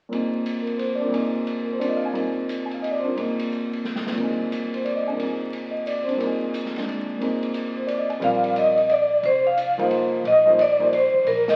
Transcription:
0.09 grand piano A#2 A#3 C4 D#4, ride
0.14 grand piano G#4
0.46 hi-hat pedal, ride
0.62 grand piano A#4
0.67 ride
0.78 grand piano C5, ride
0.95 grand piano C4 D5
1.00 grand piano D4 F4 A#4
1.08 grand piano A#2 A#3 C4 D#4
1.13 grand piano G#4, ride
1.47 ride
1.63 grand piano A#4
1.71 grand piano C5
1.79 grand piano C4 D4 F4 A#4 D5, hi-hat pedal, ride
1.89 grand piano D#5
1.97 grand piano F5
2.05 grand piano G#5
2.13 grand piano A#2 A#3 C4 D#4 G#4, ride
2.49 hi-hat pedal, ride
2.66 grand piano G#5
2.71 grand piano F5, ride
2.82 grand piano D#5, ride
2.91 grand piano D5
3.00 grand piano C4 C5
3.04 grand piano D4 F4 A#4
3.16 grand piano A#2 A#3 C4 D#4 G#4, ride
3.39 ride
3.52 hi-hat pedal
3.73 ride
3.85 snare
3.96 snare
4.07 snare
4.12 grand piano A#2 A#3
4.18 grand piano C4 D#4, kick, ride
4.23 grand piano G#4
4.52 hi-hat pedal, ride
4.74 grand piano C5, ride
4.85 grand piano D5, ride
4.96 grand piano D#5
5.06 grand piano C4 D4 G#4 G#5
5.14 grand piano A#2 A#3
5.19 grand piano C4 D#4, ride
5.25 grand piano G#4
5.53 ride
5.71 grand piano D#5
5.87 grand piano D5, hi-hat pedal, ride
6.03 grand piano C4 C5
6.08 grand piano D4 G#4, ride
6.15 grand piano A#2 A#3
6.20 grand piano C4 D#4, ride
6.26 grand piano G#4
6.54 hi-hat pedal, ride
6.65 snare
6.74 grand piano G#3 D4, snare, ride
6.89 ride
7.18 grand piano A#2 A#3 C4 D#4, ride
7.23 grand piano G#4
7.43 ride
7.54 hi-hat pedal, ride
7.76 grand piano C5
7.87 grand piano D5, hi-hat pedal, ride
7.98 grand piano D#5
8.10 grand piano G#5, ride
8.20 upright bass A#1, grand piano G3 C4 F4 A#4 D5, ride
8.24 vibraphone F5
8.44 ride
8.56 vibraphone D#5, hi-hat pedal, ride
8.77 ride
8.89 vibraphone D5, ride
9.23 upright bass F1, vibraphone C5, ride
9.47 vibraphone F5
9.57 hi-hat pedal, ride
9.78 grand piano F3 A#3 D#4 G#4 C5, ride
9.91 ride
10.24 upright bass A#1, ride
10.28 vibraphone D#5
10.45 grand piano F3 A#3 D#4 G#4 C5
10.59 vibraphone D5, hi-hat pedal, ride
10.79 grand piano F3 A#3 D#4 G#4 C5
10.93 vibraphone C5, ride
11.14 muted upright bass stroke, kick
11.24 upright bass A#1, vibraphone A#4, ride
11.48 vibraphone D#5, snare, ride

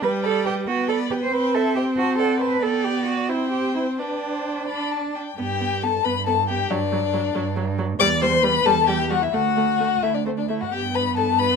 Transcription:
0.02 viola G3, violin B4 G5, cello B4
0.23 cello A4, violin D5 B5
0.45 cello G4, violin B4 G5
0.67 viola B3, cello F#4, violin B4 G5
0.89 cello A4, violin D5 B5
1.11 cello G4, violin B4 G5
1.22 cello C5
1.33 viola C4, cello B4, violin C5 G5
1.55 cello A4, violin E5 A5
1.76 cello G4, violin C5 G5
1.97 cello F#4, violin C5 A5
2.19 cello A4, violin D5 F#5
2.41 cello B4, violin C5 A5
2.62 viola B3, cello A4, violin D5 G5
2.84 cello G4
3.07 cello F#4
3.29 viola C4, cello E4, violin C5 G5
3.52 cello G4
3.75 cello E4
3.99 cello D4, viola D4, violin B4 G5
4.34 violin C5
4.68 viola D4, violin D5 B5
4.92 violin A5
5.15 violin G5
5.38 cello G2, viola B3, violin G4 G5
5.61 viola B3
5.83 viola B3, violin A4 A5
6.04 cello G2, viola B3, violin B4 B5
6.26 viola B3, violin A4 A5
6.48 viola B3, violin G4 G5
6.70 cello G2, viola F#3, violin D4 D5
6.92 viola F#3
7.14 viola F#3
7.35 cello G2, viola F#3
7.57 viola F#3
7.79 viola F#3
8.00 cello E2, viola G3, violin D5 D6
8.22 viola G3, violin C5 C6
8.42 viola G3, violin B4 B5
8.65 cello E2, viola G3, violin A4 A5
8.87 viola G3, violin G4 G5
9.10 viola G3, violin F#4 F#5
9.22 violin E4 E5
9.33 cello D2, viola A3, violin F#4 F#5
9.57 viola A3
9.80 viola A3
10.02 cello D2, viola A3, violin E4 E5
10.14 violin D4 D5
10.26 viola A3, violin C4 C5
10.37 violin D4 D5
10.49 viola A3, violin E4 E5
10.61 violin F#4 F#5
10.71 cello G2, viola B3, violin G4 G5
10.94 violin B4 B5
11.17 violin A4 A5
11.39 violin B4 B5

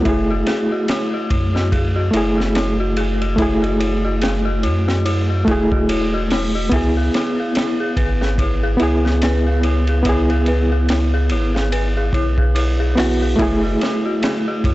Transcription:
0.02 sub bass F#1, reed electric piano A3 E4, synth bell E4, kick, ride
0.09 reed electric piano G#4
0.30 synth bell F#4
0.46 synth bell G#4, snare, ride
0.72 synth bell F#4
0.88 synth bell E4, snare, ride
1.14 synth bell F#4
1.30 sub bass F#2, synth bell E4, kick, ride
1.55 synth bell F#4, snare
1.72 synth bell G#4, kick, ride
1.95 synth bell F#4
2.11 sub bass F#1, reed electric piano A3 E4, synth bell E4, ride
2.17 reed electric piano G#4
2.38 synth bell F#4, snare
2.55 synth bell E4, snare, ride
2.80 synth bell F#4
2.97 synth bell G#4, ride
3.21 synth bell F#4, ride
3.36 reed electric piano A3 E4, synth bell E4, kick, ride
3.42 reed electric piano G#4
3.62 synth bell F#4, ride
3.79 synth bell E4, ride
4.04 synth bell F#4
4.21 synth bell G#4, snare, ride
4.45 synth bell F#4
4.63 sub bass F#2, synth bell E4, ride
4.88 synth bell F#4, snare
5.05 synth bell E4, ride
5.30 synth bell F#4
5.45 sub bass E1, reed electric piano A3 E4, synth bell G#4, kick, ride
5.51 reed electric piano G#4
5.72 synth bell F#4, kick
5.89 synth bell E4, ride
6.14 synth bell F#4
6.31 synth bell E4, snare, open hi-hat
6.55 synth bell F#4
6.69 sub bass C#2, reed electric piano B3 E4, synth bell B4, kick, ride
6.76 reed electric piano G#4
6.97 synth bell G#4
7.14 synth bell E4, snare, ride
7.40 synth bell G#4
7.55 synth bell E4, snare, ride
7.80 synth bell G#4
7.97 sub bass G#1, synth bell B4, kick, ride
8.21 synth bell G#4, snare
8.38 synth bell E4, kick, ride
8.63 synth bell G#4
8.77 reed electric piano B3 E4, ride
8.81 sub bass C#2, synth bell E4, reed electric piano G#4
9.05 synth bell G#4, snare
9.22 synth bell B4, snare, ride
9.47 synth bell G#4
9.63 synth bell E4, ride
9.87 synth bell G#4, ride
10.03 reed electric piano B3 E4, synth bell E4, kick, ride
10.09 reed electric piano G#4
10.30 synth bell G#4, ride
10.46 synth bell B4, ride
10.72 synth bell G#4
10.89 synth bell E4, snare, ride
11.14 synth bell G#4
11.29 sub bass G#1, synth bell E4, ride
11.55 synth bell G#4, snare
11.72 synth bell B4, ride
11.97 synth bell G#4
12.13 sub bass B1, synth bell E4, kick, ride
12.38 synth bell G#4, kick
12.55 synth bell E4, ride
12.80 synth bell G#4
12.95 reed electric piano B3 E4 F#4, synth bell B4, snare, open hi-hat
13.22 synth bell G#4
13.36 sub bass F#1, reed electric piano A3 E4, synth bell E4, kick, ride
13.42 reed electric piano G#4
13.63 synth bell F#4
13.81 synth bell E4, snare, ride
14.05 synth bell F#4
14.23 synth bell G#4, snare, ride
14.48 synth bell F#4
14.64 sub bass F#2, synth bell E4, kick, ride

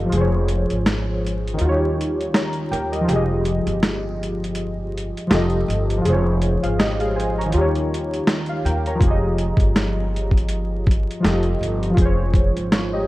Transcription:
Already playing: synth keys F3 F4 G4 A4 D#5 F5
0.05 synth keys F3 F4
0.12 upright bass F1, synth keys G#4, closed hi-hat
0.17 synth keys C5 C#5
0.48 closed hi-hat
0.70 upright bass G#1, closed hi-hat
0.86 snare, closed hi-hat
1.27 closed hi-hat
1.48 closed hi-hat
1.54 synth keys D#3 D#4
1.59 upright bass D#2, synth keys F4, closed hi-hat
1.65 synth keys F#4 C#5
1.71 synth keys G4
2.01 closed hi-hat
2.21 closed hi-hat
2.34 synth keys C#5 A#5, snare, closed hi-hat
2.53 closed hi-hat
2.71 upright bass D#2, synth keys A#4 G5, closed hi-hat
2.92 synth keys G4 D#5, closed hi-hat
3.01 synth keys F3 F4
3.08 upright bass F1, synth keys G4 G#4, closed hi-hat
3.16 synth keys D#5
3.45 closed hi-hat
3.67 upright bass G1, closed hi-hat
3.83 snare, closed hi-hat
4.23 closed hi-hat
4.44 closed hi-hat
4.55 closed hi-hat
4.98 closed hi-hat
5.17 closed hi-hat
5.27 upright bass F1, synth keys F3 F4 G4, snare
5.32 synth keys A4 D#5, closed hi-hat
5.50 closed hi-hat
5.68 upright bass G1, closed hi-hat
5.90 closed hi-hat
5.97 synth keys F3 F4
6.05 upright bass F1, synth keys G#4, closed hi-hat
6.09 synth keys C5 C#5
6.42 closed hi-hat
6.63 upright bass G#1, synth keys G#4 F5, closed hi-hat
6.79 synth keys G4 D#5, snare, closed hi-hat
7.00 synth keys G#4 F5, closed hi-hat
7.16 synth keys C5 G#5, closed hi-hat
7.38 synth keys C#5 A#5, closed hi-hat
7.46 synth keys D#3
7.50 synth keys D#4 F4, closed hi-hat
7.54 upright bass D#2, synth keys G4
7.61 synth keys C#5
7.75 closed hi-hat
7.94 closed hi-hat
8.14 closed hi-hat
8.27 snare, closed hi-hat
8.46 synth keys F5, closed hi-hat
8.65 upright bass D#2, synth keys A#4 G5, closed hi-hat
8.86 synth keys C#5 A#5, closed hi-hat
8.95 synth keys F3
8.99 upright bass F1, synth keys F4 G4, kick, closed hi-hat
9.07 synth keys G#4 D#5
9.38 closed hi-hat
9.57 upright bass G1, kick, closed hi-hat
9.76 snare, closed hi-hat
10.16 closed hi-hat
10.31 kick
10.37 closed hi-hat
10.49 closed hi-hat
10.87 kick
10.91 closed hi-hat
11.11 closed hi-hat
11.20 synth keys F3 F4
11.24 upright bass F1, synth keys G4 A4 D#5, snare, closed hi-hat
11.43 closed hi-hat
11.61 upright bass G1, closed hi-hat
11.83 closed hi-hat
11.90 synth keys F3 F4
11.97 upright bass F1, synth keys G#4, kick, closed hi-hat
12.02 synth keys C5 C#5
12.34 kick, closed hi-hat
12.56 upright bass G#1, closed hi-hat
12.72 synth keys F4 C#5, snare, closed hi-hat
12.93 synth keys G4 D#5

